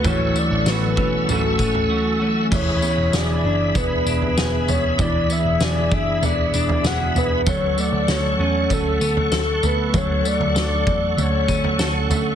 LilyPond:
<<
  \new Staff \with { instrumentName = "Tonewheel organ" } { \time 4/4 \key e \mixolydian \tempo 4 = 97 <a' fis'' cis''' e'''>1 | <gis' e'' b''>1~ | <gis' e'' b''>1 | <a' fis'' cis'''>1~ |
<a' fis'' cis'''>1 | }
  \new Staff \with { instrumentName = "Soft synth lead" } { \time 4/4 \key e \mixolydian cis''8 d''8 b'4 a'4. r8 | cis''4 d''4 b'4. cis''8 | d''8 e''8 d''8 e''8 d''8 d''8 fis''8 b'8 | cis''8 d''8 cis''4 a'4. b'8 |
cis''8 d''4. cis''4. r8 | }
  \new Staff \with { instrumentName = "Clean electric guitar" } { \time 4/4 \key e \mixolydian e8 a8 fis'8 cis'8 a8 cis'8 fis'8 a8 | e8 b8 gis'8 d'8 b8 d'8 gis'8 b8 | e8 b8 gis'8 d'8 b8 d'8 gis'8 b8 | fis8 a8 a'8 cis'8 a8 b16 r16 a'8 a8 |
fis8 a8 a'4 a8 cis'8 a'8 a8 | }
  \new Staff \with { instrumentName = "Clean electric guitar" } { \time 4/4 \key e \mixolydian <a, e fis a cis' fis'>8 <fis a fis'>8 <fis a cis' fis'>8 <fis a cis' fis'>8 <a, e fis a cis' fis'>8 <fis a cis' fis'>8 <fis a cis' fis'>8 <fis a cis' fis'>8 | r1 | r1 | r1 |
r1 | }
  \new Staff \with { instrumentName = "Picked electric bass" } { \clef bass \time 4/4 \key e \mixolydian a,,8 r16 a,,16 a,,8 b,,8 a,,8 a,,8 r4 | e,,8 r16 e,,16 e,,8 fis,,8 e,,8 e,,8 e,,8 e,,8 | e,,8 r16 e,,16 e,,8 fis,,8 e,,8 e,,8 e,,8 e,,8 | d,8 r16 d,16 d,8 e,8 d,8 d,8 d,8 d,8 |
d,8 r16 d,16 d,8 e,8 d,8 d,8 d,8 d,8 | }
  \new DrumStaff \with { instrumentName = "Drums" } \drummode { \time 4/4 <bd tamb tomfh>8 tamb8 <sn tamb>8 bd8 <tamb tomfh>8 <bd tamb>16 tomfh16 r4 | <cymc bd tamb tomfh>8 tamb8 <sn tamb>4 <bd tamb tomfh>8 tamb16 tomfh16 <sn tamb>8 <tamb tomfh>8 | <bd tamb tomfh>8 tamb8 <sn tamb>8 bd8 <tamb tomfh>8 tamb16 tomfh16 <sn tamb>8 <tamb tomfh>8 | <bd tamb tomfh>8 tamb8 <sn tamb>4 <bd tamb tomfh>8 tamb16 tomfh16 <sn tamb>8 <tamb tomfh>8 |
<bd tamb tomfh>8 tamb16 tomfh16 <sn tamb>8 bd8 <tamb tomfh>8 <bd tamb>16 tomfh16 <sn tamb>8 <tamb tomfh>8 | }
>>